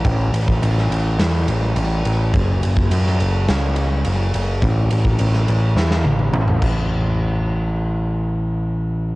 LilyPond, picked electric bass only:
\new Staff \with { instrumentName = "Picked electric bass" } { \clef bass \time 4/4 \key a \major \tempo 4 = 105 a,,8 a,,8 a,,8 a,,8 e,8 a,,8 a,,8 a,,8 | fis,,8 fis,,8 fis,8 fis,,8 cis,4 fis,,8 fis,,8 | a,,8 a,,8 a,,8 a,,8 e,8 a,,8 a,,8 a,,8~ | a,,1 | }